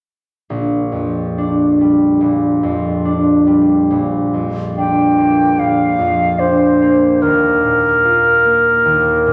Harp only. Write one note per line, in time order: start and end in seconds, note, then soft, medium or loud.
0.50 2.19 A#1 soft
0.92 2.62 F2 soft
1.38 3.04 D4 soft
1.81 3.46 G3 soft
2.21 3.89 A#1 soft
2.63 3.95 F2 soft
3.05 4.77 D4 soft
3.47 7.37 G3 soft
3.91 5.58 A#1 soft
4.34 5.97 F2 soft
4.78 6.38 D4 soft
5.18 6.81 A#3 soft
5.59 7.26 A#1 soft
5.99 7.26 F2 soft
6.39 7.25 D4 soft
6.82 8.44 A#3 soft
7.22 8.84 D#2 soft
7.64 9.25 A#2 soft
8.05 9.33 F4 soft
8.45 9.33 A#3 soft
8.85 9.33 D#2 soft
9.26 9.33 A#2 soft